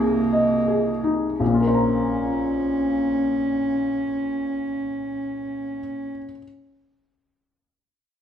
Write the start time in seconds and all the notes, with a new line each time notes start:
Already playing: C2 C3 D#4
0.00 A#3 G#4
0.33 D#5
0.68 G#4
1.04 D#4
1.40 A#1 C#4
1.46 A#2
1.54 F4
1.60 A#4
1.68 C5
1.74 A#5